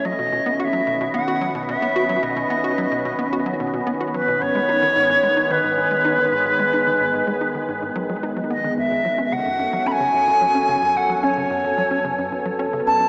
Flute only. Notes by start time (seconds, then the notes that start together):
0.05 D#5
0.60 F#5
0.64 E5
1.14 F#5
1.68 E5
2.23 D#5
4.14 B4
4.42 C#5
5.51 B4
8.51 D#5
8.78 E5
9.33 F#5
9.87 B5
9.92 G#5
10.97 F#5
11.24 C#5
12.87 A5